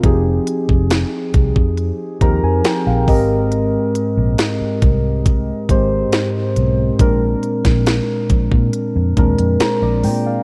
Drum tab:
HH |x-x-x-x-x-x-x-o-|x-x-x-x-x-x-x-x-|x-xxx-x-x-xxx-o-|
SD |----o-------o---|----o-------o---|---oo-------o---|
BD |o--o--oo--o---o-|------o-o-o-----|o--o--oo--o-----|